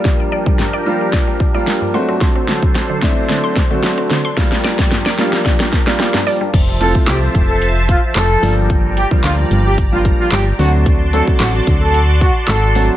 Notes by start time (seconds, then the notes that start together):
Already playing: F3 G3 A#3 D4 F4 G4 A#4
0.05 G3, kick, snare
0.32 D5
0.46 G3, kick
0.59 G2, snare
0.73 D5
0.86 G3 A#3 D4 F4
1.13 D5, kick, snare
1.27 G3
1.40 kick
1.54 G3 A#3 D4 F4 D5
1.67 G3, snare
1.81 G2
1.94 F#3 A3 C4 D4 F#4 A4 C5 C6
2.09 C4
2.21 C6, kick, snare, closed hi-hat
2.35 C4
2.48 D3, snare, closed hi-hat
2.63 kick
2.75 C4, snare, closed hi-hat
2.90 D3
3.02 A3 C4 D4 E4 C6, kick, snare, closed hi-hat
3.29 D3, snare, closed hi-hat
3.44 C6
3.56 kick, snare, closed hi-hat
3.70 D3 A3 C4 D4 F#4
3.83 snare, closed hi-hat
3.98 C4
4.10 D3, snare, closed hi-hat
4.25 C6
4.37 F3 G3 A#3 D4 F4 G4 A#4, kick, snare, closed hi-hat
4.52 snare
4.64 D5, snare, closed hi-hat
4.79 G3, kick, snare
4.91 G2, snare, closed hi-hat
5.06 D5, snare
5.18 G3 A#3 D4 F4, snare, closed hi-hat
5.33 snare
5.45 D5, kick, snare, closed hi-hat
5.60 G3, snare
5.73 kick, snare, closed hi-hat
5.87 G3 A#3 D4 F4 D5, snare
5.99 G3, snare, closed hi-hat
6.14 G2, snare
6.27 D5, open hi-hat
6.41 G3
6.54 F1 F3 C5 E5 A5, kick, closed hi-hat, crash
6.80 F3 A3 C4 E4 F4 A4, closed hi-hat
6.95 kick
7.07 C2 G4, snare, clap, closed hi-hat
7.35 F1, kick, closed hi-hat
7.49 A4
7.62 closed hi-hat
7.89 F4, kick, closed hi-hat
8.15 F1 A4, snare, clap, closed hi-hat
8.43 G1 F3 G3 A#3 D4 F4 D5 G5 A#5, open hi-hat
8.70 kick, closed hi-hat
8.97 G4, closed hi-hat
9.11 F3 G3 A#3 D4 F4, kick
9.24 D2 F4, snare, clap, closed hi-hat
9.51 G1, closed hi-hat
9.65 G4
9.78 kick, closed hi-hat
9.92 F3 G3 A#3 D4 F4
10.05 kick, closed hi-hat
10.19 F4
10.31 G1 G4, snare, clap, closed hi-hat
10.59 D2 F#3 A3 C4 D4 F#4 D5 A5 C6, open hi-hat
10.86 kick, closed hi-hat
11.13 F#3 A3 C4 D4 F#4 A4, closed hi-hat
11.28 kick
11.40 A1 F#4, snare, clap, closed hi-hat
11.67 D2, kick, closed hi-hat
11.81 A4
11.94 closed hi-hat
12.21 F#4, kick, closed hi-hat
12.48 G#1 A4, snare, clap, closed hi-hat
12.75 F#3 A3 C4 D4 F#4, open hi-hat